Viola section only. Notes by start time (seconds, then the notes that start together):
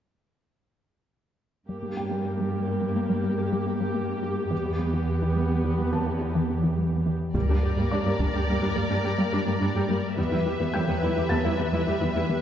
1.69 A#3 G4
4.51 B3
7.35 G3 A#3
7.49 G3 D4
7.64 G3 G4
7.77 G3 A#3
7.92 G3 D4
8.06 G3 A#3
8.20 G3 D4
8.34 G3 G4
8.48 G3 A#3
8.62 G3 D4
8.75 G3 A#3
8.90 G3 D4
9.04 G3 G4
9.18 G3 A#3
9.33 G3 D4
9.47 G3 A#3
9.61 G3 D4
9.76 G3 G4
9.89 G3 A#3
10.17 G3 B3
10.32 G3 E4
10.46 G3 G4
10.60 G3 B3
10.74 G3 E4
10.88 G3 B3
11.02 G3 E4
11.17 G3 G4
11.30 G3 B3
11.44 G3 E4
11.59 G3 B3
11.73 G3 E4
11.87 G3 G4
12.02 G3 B3
12.16 G3 E4
12.30 G3 B3